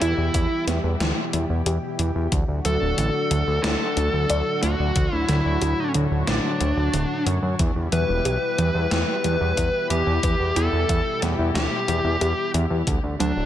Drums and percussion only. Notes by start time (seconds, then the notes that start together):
0.02 closed hi-hat
0.34 kick, closed hi-hat
0.68 snare, closed hi-hat
1.00 snare, closed hi-hat
1.33 closed hi-hat
1.66 closed hi-hat
1.99 closed hi-hat
2.32 kick, closed hi-hat
2.65 closed hi-hat
2.98 closed hi-hat
3.31 closed hi-hat
3.64 snare, closed hi-hat
3.97 closed hi-hat
4.30 closed hi-hat
4.63 closed hi-hat
4.96 kick, closed hi-hat
5.29 snare, closed hi-hat
5.62 closed hi-hat
5.94 closed hi-hat
6.27 snare, closed hi-hat
6.61 closed hi-hat
6.94 closed hi-hat
7.27 closed hi-hat
7.59 kick, closed hi-hat
7.92 closed hi-hat
8.25 closed hi-hat
8.58 closed hi-hat
8.91 snare, closed hi-hat
9.24 closed hi-hat
9.57 kick, closed hi-hat
9.90 closed hi-hat
10.23 kick, closed hi-hat
10.56 closed hi-hat
10.89 kick, closed hi-hat
11.22 snare, closed hi-hat
11.55 snare, closed hi-hat
11.88 closed hi-hat
12.21 closed hi-hat
12.54 closed hi-hat
12.87 kick, closed hi-hat
13.20 closed hi-hat